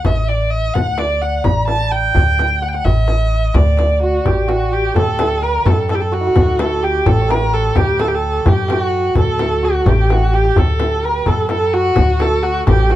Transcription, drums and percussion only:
0.04 tombak dum medium
0.04 frame drum medium
0.29 tombak tek medium
0.54 tombak ka soft
0.75 frame drum medium
0.75 tombak dum medium
0.98 tombak tek medium
0.98 frame drum medium
1.22 tombak ka soft
1.44 frame drum medium
1.44 tombak dum medium
1.68 tombak tek medium
1.68 frame drum medium
1.92 tombak ka soft
2.15 tombak dum loud
2.15 frame drum medium
2.39 tombak tek medium
2.39 frame drum medium
2.63 tombak ka soft
2.85 frame drum medium
2.85 tombak dum medium
3.08 tombak tek medium
3.08 frame drum medium
3.32 tombak ka soft
3.54 frame drum medium
3.54 tombak dum medium
3.77 tombak tek medium
3.77 frame drum medium
4.02 tombak ka soft
4.25 tombak dum medium
4.25 frame drum medium
4.49 tombak tek medium
4.49 frame drum medium
4.73 tombak ka soft
4.95 tombak dum medium
4.95 frame drum medium
5.19 tombak tek medium
5.19 frame drum medium
5.66 frame drum medium
5.66 tombak dum medium
5.89 tombak tek medium
5.89 frame drum medium
6.36 frame drum medium
6.36 tombak dum medium
6.59 tombak tek medium
6.59 frame drum medium
7.06 tombak dum medium
7.06 frame drum medium
7.30 tombak tek medium
7.30 frame drum medium
7.76 frame drum medium
7.76 tombak dum medium
7.99 tombak tek medium
7.99 frame drum medium
8.46 tombak dum medium
8.46 frame drum medium
8.68 tombak tek medium
8.68 frame drum medium
9.15 tombak dum loud
9.15 frame drum medium
9.39 tombak tek medium
9.39 frame drum medium
9.63 tombak ka soft
9.86 tombak dum medium
9.86 frame drum medium
10.10 tombak tek soft
10.10 frame drum medium
10.23 tombak ka medium
10.34 tombak tek medium
10.45 tombak ka medium
10.56 tombak dum medium
10.56 frame drum medium
10.80 tombak tek medium
10.80 frame drum medium
11.26 frame drum medium
11.26 tombak dum medium
11.49 tombak tek medium
11.49 frame drum medium
11.96 frame drum medium
11.96 tombak dum medium
12.19 tombak tek medium
12.19 frame drum medium
12.67 frame drum medium
12.67 tombak dum medium
12.90 tombak tek medium
12.90 frame drum medium

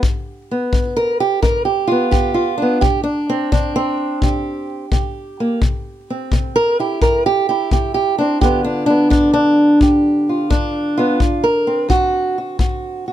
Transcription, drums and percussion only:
0.03 kick medium
0.73 kick medium
1.43 kick medium
2.12 kick medium
2.82 kick medium
3.52 kick medium
4.22 kick medium
4.92 kick medium
5.62 kick medium
6.32 kick medium
7.02 kick medium
7.71 kick medium
8.42 kick medium
9.11 kick medium
9.81 kick medium
10.51 kick medium
11.20 kick medium
11.90 kick medium
12.59 kick medium

